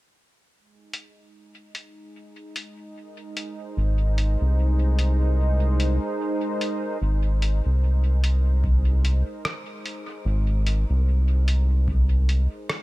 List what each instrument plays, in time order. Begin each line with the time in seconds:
0.53 analog synth pad G#3
0.68 analog synth pad D#4
0.94 closed hi-hat
1.75 closed hi-hat
2.56 closed hi-hat
2.94 analog synth pad A#4
3.37 closed hi-hat
3.46 analog synth pad C5
3.77 analog synth bass G#1
4.18 closed hi-hat
4.41 analog synth bass C2
4.99 closed hi-hat
5.80 closed hi-hat
6.61 closed hi-hat
7.02 analog synth bass G#1
7.42 closed hi-hat
7.66 analog synth bass C2
8.24 closed hi-hat
8.64 kick
9.05 closed hi-hat
9.45 cross-stick
9.86 closed hi-hat
10.25 analog synth bass G#1
10.67 closed hi-hat
10.90 analog synth bass C2
11.48 closed hi-hat
11.88 kick
12.29 closed hi-hat
12.70 cross-stick